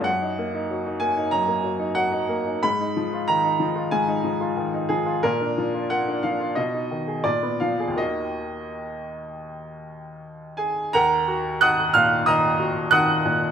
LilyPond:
<<
  \new Staff \with { instrumentName = "Upright piano" } { \time 4/4 \key ees \minor \tempo 4 = 91 ges''4. aes''8 bes''4 ges''4 | ces'''4 bes''4 aes''4. aes'8 | bes'4 ges''8 f''8 ees''4 d''8 f''8 | ees''2.~ ees''8 <aes' aes''>8 |
<bes' ges'' bes''>4 <ges'' ees''' ges'''>8 <f'' f'''>8 <ees'' bes'' ees'''>4 <ges'' ees''' ges'''>4 | }
  \new Staff \with { instrumentName = "Upright piano" } { \time 4/4 \key ees \minor ges,16 ees'16 bes16 ees'16 ges16 ees'16 bes16 ees'16 ges,16 bes16 ges16 ees'16 ges16 ees'16 bes16 ees'16 | aes,16 ees'16 f16 f'16 ees16 ees'16 f16 f'16 aes,16 ees'16 f16 f'16 ees16 ees'16 f16 f'16 | bes,16 d'16 f16 f'16 bes16 d'16 f16 f'16 ces16 ees'16 ees16 aes'16 bes,16 ces'16 f16 aes'16 | <ees, ees bes ges'>1 |
ees,8 ges'8 ees8 bes,8 ees8 ges'8 ees8 bes,8 | }
>>